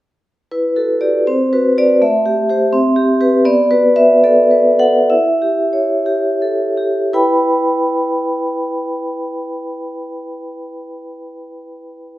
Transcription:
vibraphone
0.51 E4 B4
0.76 F#4 A4
1.01 F#4 G4 D5
1.27 C4 C5
1.53 F#4 B4
1.78 F#4 B4 D5
2.02 A3 E5
2.26 G4
2.49 G4 C5
2.73 C4
2.96 G4
3.21 G4 B4
3.45 B3 D5
3.71 F#4 B4
3.96 B4 E5
4.24 A4 D5
4.51 B4
4.79 A4 F#5
5.10 E4 E5
5.42 G4
5.73 C#5
6.06 G4
6.42 A4
6.77 G4
7.13 E4 B4 G5 B5

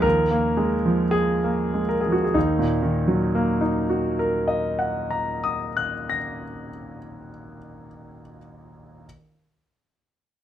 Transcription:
grand piano
Already playing: F3
0.02 D#2 A#4
0.31 A#3
0.57 G#3
0.85 F3
1.11 G#4
1.44 A#3
1.74 G#3
1.89 A#4
2.01 G#4
2.06 F3
2.12 F#4
2.24 G#4
2.34 D#2 D#4
2.59 A#2
2.83 D#3
3.08 F#3
3.35 A#3
3.61 D#4
3.90 F#4
4.19 A#4
4.48 D#5
4.79 F#5
5.11 A#5
5.44 D#6
5.77 F#6
6.09 A#6

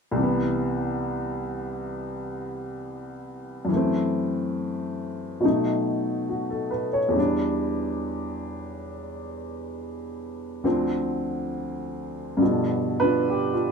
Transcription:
upright piano
0.12 C2 C3
0.19 E3 B3
3.65 F#2 E3
3.72 A3
3.76 C4
5.40 B2 F#3 A3
5.45 D#4
6.29 F#4
6.50 A4
6.71 B4
6.93 C#5
7.08 E2 E3
7.16 G3 D4
10.64 D2 D3 F3 C4
12.37 G2 D3 F3
12.42 B2
13.00 D4 F4 B4
13.30 G4
13.53 F4

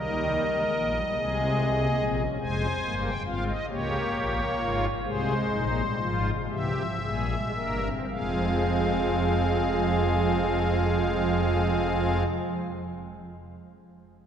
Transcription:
pipe organ
Already playing: D#2 D#3 G3 A#4 D#5
0.54 G#3
0.74 A#1 A#2 A#3
0.95 G3
1.16 C2 C3 G#3 G#4
1.77 A#3
1.99 A#1 A#2 C4
2.19 C#4
2.40 F1 F2 G#3 C5 G#5
2.83 G1 G2 A#3
3.04 G5
3.25 G#1 G#2 C4 F4 F5
3.47 D#5
3.69 C#2 C#3 A#3 G4 C#5
4.13 A#1 A#2
4.58 G#1 G#2 F4
5.04 C2 C3 G#3 G#4 C5
5.51 A#1 A#2 D#4
5.76 G3
6.00 G#1 G#2 F3 F4
6.25 G#3
6.50 C2 C3 E3 G4 E5
6.76 F3
7.02 A#1 A#2 G3 G#4
7.28 G#3
7.55 G1 G2 A#3 A#4
7.82 C4
8.10 F1 F2 F3 G#3 C4 G#4 F5

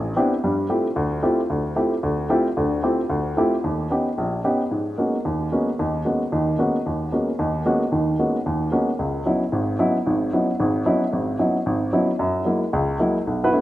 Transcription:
grand piano
Already playing: A1
0.16 B3 C4 D4 E4 G4
0.44 G2 G3
0.69 A3 C4 E4 F4 G4
0.96 D2
1.23 A3 C4 E4 F4 G4
1.50 D2
1.76 A3 C4 E4 F4 G4
2.03 D2
2.29 A3 C4 E4 F4 G4
2.57 D2 D3
2.83 A3 C4 E4 F4 G4
3.10 D2
3.37 A3 C4 E4 F4 G4
3.64 D#2
3.90 B3 C#4 D#4 G4
4.18 A#1
4.44 B3 C#4 D#4 G4
4.71 G#2
4.98 G#3 A#3 B3 C#4 F#4
5.25 D#2
5.52 G#3 A#3 B3 C#4 F#4
5.79 D#2 D#3
6.05 G#3 A#3 B3 C#4 F#4
6.32 D#2 D#3
6.59 G#3 A#3 B3 C#4 F#4
6.86 D#2
7.12 G#3 A#3 B3 C#4 F#4
7.39 D#2 D#3
7.66 G#3 A#3 B3 C#4 F#4
7.92 D#2 D#3
8.19 G#3 A#3 B3 C#4 F#4
8.46 D#2
8.72 G#3 A#3 B3 C#4 F#4
8.99 C#2
9.25 F#3 B3 C#4 D#4 E4
9.52 G#1 G#2
9.79 F#3 B3 C#4 D#4 E4
10.06 G#1 G#2
10.33 F#3 B3 C#4 D#4 E4
10.60 G#1 G#2
10.86 F#3 B3 C#4 D#4 E4
11.13 G#1 G#2
11.39 F#3 B3 C#4 D#4 E4
11.66 G#1
11.93 F#3 B3 C#4 D#4 E4
12.19 F#2
12.45 F#3 G#3 A#3 E4
12.73 C#2
12.99 F#3 G#3 A#3 E4
13.27 B1
13.44 B3 E4 F#4 B4
13.53 A3 B3 C#4 E4

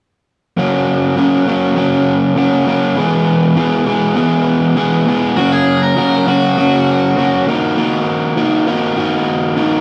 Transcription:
overdriven electric guitar
0.57 F#2 C#3 F#3 A#3 C#4 F#4
1.16 F#2 C#3 F#3 A#3 C#4 F#4
1.46 F#2 C#3 F#3 A#3 C#4 F#4
1.76 F#2 C#3 F#3 A#3 C#4 F#4
2.36 F#2 C#3 F#3 A#3 C#4 F#4
2.66 F#2 C#3 F#3 A#3 C#4 F#4
2.96 E2 B2 E3 G#3 B3 G#4
3.56 E2 B2 E3 G#3 B3 G#4
3.85 E2 B2 E3 G#3 B3 G#4
4.15 E2 B2 E3 G#3 B3 G#4
4.75 E2 B2 E3 G#3 B3 G#4
5.06 E2 B2 E3 G#3 B3 G#4
5.36 F#2 C#3 F#3 A#3 C#4 F#4
5.52 G#4
5.83 A#4
5.96 F#2 C#3 F#3 A#3 C#4 F#4
6.26 F#2 C#3 F#3 A#3 C#4 F#4
6.57 F#2 C#3 F#3 A#3 C#4 F#4
7.17 F#2 C#3 F#3 A#3 C#4 F#4
7.47 D#3 A#3 D#4 F#4
7.77 D#3 A#3 D#4 F#4
8.37 D#3 A#3 D#4 F#4
8.66 D#3 A#3 D#4 F#4
8.96 D#3 A#3 D#4 F#4
9.57 D#3 A#3 D#4 F#4

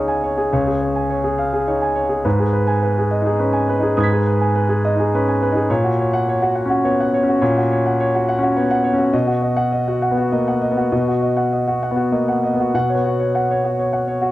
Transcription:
grand piano
Already playing: C#2 D#4 G#4 C#5 F5 G#5
0.08 G#5
0.23 C#5
0.38 G#4
0.53 C#2 C#5
0.67 G#4
0.82 C#5
0.96 G#5
1.10 C#5
1.24 G#4
1.38 F5
1.53 G#4
1.67 D#4 C#5
1.82 G#5
1.95 C#5
2.09 G#4
2.24 G#2 B4
2.39 G#4
2.53 B4
2.67 G#5
2.83 B4
2.98 G#4
3.11 D#5
3.22 D#4
3.26 G#4
3.39 C#4 B4
3.53 G#5
3.69 B4
3.79 D#4 G#4
3.97 G#2 B4 D#6 G#6
4.03 B6
4.12 G#4
4.27 B4
4.41 G#5
4.55 B4
4.69 G#4
4.85 D#5
4.95 D#4
4.99 G#4
5.14 C#4 B4
5.28 G#5
5.42 B4
5.52 D#4
5.56 G#4
5.70 A#2 C#5
5.84 F#4
5.99 C#5
6.13 F#5
6.29 C#5
6.42 F#4
6.55 F#5
6.66 C#4
6.70 F#4
6.84 B3 C#5
7.00 F#5
7.14 C#5
7.23 C#4
7.29 F#4
7.41 A#2 C#5
7.57 F#4
7.71 C#5
7.86 F#5
8.00 C#5
8.15 F#4
8.29 F#5
8.39 C#4
8.43 F#4
8.56 B3 C#5
8.71 F#5
8.84 C#5
8.93 C#4
8.98 F#4
9.13 B2 D#5
9.27 F#4
9.42 D#5
9.57 F#5
9.72 D#5
9.88 F#4
10.02 F#5
10.11 B3
10.17 F#4
10.32 A#3 D#5
10.48 F#5
10.62 D#5
10.72 B3
10.77 F#4
10.92 B2 D#5
11.08 F#4
11.22 D#5
11.37 F#5
11.53 D#5
11.68 F#4
11.83 F#5
11.91 B3
11.96 F#4
12.12 A#3 D#5
12.28 F#5
12.44 D#5
12.54 B3
12.60 F#4
12.74 B2 F#5
12.90 C#5
12.95 B3
13.04 F#4
13.20 C#5
13.35 F#5
13.51 C#5
13.64 F#4
13.79 C#5
13.93 F#5
14.08 C#5
14.22 F#4

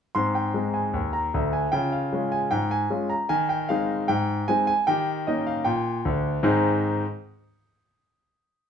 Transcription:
grand piano
0.15 G#2 C4 C6
0.35 G5
0.54 G#3 C4 D#4
0.74 G#5
0.94 D#2
1.13 A#5
1.34 D2 D3
1.53 G#5
1.72 C#3 F4 G5
1.92 F5
2.13 G#3 C#4 F4
2.32 G#5
2.51 G#2 G5
2.71 G#5
2.90 G#3 C#4 F4
3.10 A#5
3.29 D#3 G#5
3.49 G5
3.69 G#3 C4 D#4 F5
4.08 G#2 G5
4.48 G#3 C4 D#4 G#5
4.67 G#5
4.87 D#3 G4 G5
5.27 A#3 C#4 D#4 D#5
5.47 F5
5.65 A#2 G5
6.05 D2 D3
6.43 G#2 D#3 C4 D#4 G#4 C5 G#5

